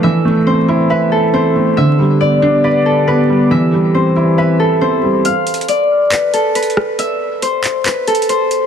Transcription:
<<
  \new Staff \with { instrumentName = "Harp" } { \time 4/4 \key c \major \tempo 4 = 138 e''4 c''4 b'8 a'8 c''4 | e''4 d''4 b'8 a'8 b'8 r8 | e''4 c''4 b'8 a'8 c''4 | f''4 d''4 b'8 a'8 b'8 r8 |
e''4 c''4 b'8 a'8 c''4 | }
  \new Staff \with { instrumentName = "Analog synth pad" } { \time 4/4 \key c \major << { a'1 | g'1~ | g'1 | r1 |
r1 | } \\ { <e c'>1 | <d b>1 | <e c'>1 | r1 |
r1 | } >> }
  \new Staff \with { instrumentName = "Felt piano" } { \time 4/4 \key c \major e8 a8 c'8 e'8 e''4 c'8 a8 | d8 g8 b8 d'8 d''4 b8 g8 | e8 g8 c'8 e'8 e''4 c'8 g8 | r1 |
r1 | }
  \new DrumStaff \with { instrumentName = "Drums" } \drummode { \time 4/4 r4 r4 r4 r4 | r4 r4 r4 r4 | r4 r4 r4 r4 | \tuplet 3/2 { hh16 r16 r16 hh16 hh16 hh16 } hh4 <hc hh>8 hh8 \tuplet 3/2 { hh16 hh16 hh16 ss16 r16 r16 } |
hh4 hh8 <hc hh>8 \tuplet 3/2 { <hc hh>16 r16 r16 hh16 hh16 hh16 } hh8 hh8 | }
>>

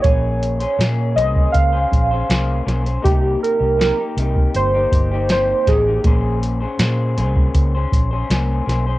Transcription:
<<
  \new Staff \with { instrumentName = "Synth keys" } { \time 4/4 \key bes \dorian \tempo 4 = 80 des''4. ees''8 f''4. r8 | g'8 bes'8 bes'4 c''4 c''8 aes'8~ | aes'8 r2. r8 | }
  \new Staff \with { instrumentName = "Clean electric guitar" } { \time 4/4 \key bes \dorian <bes des' aes'>8. <des' aes' c''>16 <bes des' aes'>8 <bes des' aes' c''>8. <des' aes' c''>8 <des' aes' c''>16 <bes des' aes' c''>8 <bes des' aes' c''>16 <des' aes' c''>16 | <c bes ees' g'>8. <bes ees' g'>16 <c bes ees' g'>16 <bes ees' g'>16 <c bes ees' g'>8. <bes ees' g'>8 <bes ees' g'>16 <c bes ees' g'>8 <c bes ees' g'>16 <bes ees' g'>16 | <bes des' aes' c''>8. <des' aes' c''>16 <bes des' aes' c''>8 <bes des' aes' c''>8. <des' aes' c''>8 <des' aes' c''>16 <bes des' aes' c''>8 <bes des' aes' c''>16 <des' aes' c''>16 | }
  \new Staff \with { instrumentName = "Fingered electric bass" } { \clef bass \time 4/4 \key bes \dorian bes,,4 bes,8 c,8 des,8 bes,,8 c,8 ces,8 | c,8 r16 c,8 r16 c,8 g,,8 g,,4 a,,8 | bes,,4 bes,8 c,8 des,8 bes,,8 c,8 ces,8 | }
  \new DrumStaff \with { instrumentName = "Drums" } \drummode { \time 4/4 <hh bd>8 hh16 hh16 <hh sn>8 hh16 bd16 <hh bd>8 <hh bd>8 <hh sn>8 <hh sn>16 hh16 | <hh bd>8 hh8 <hh sn>8 hh16 bd16 hh8 <hh bd>8 <hh sn>8 <hh bd sn>8 | <hh bd>8 hh8 <hh sn>8 hh16 bd16 <hh bd>8 <hh bd>8 <hh sn>8 <hh sn>8 | }
>>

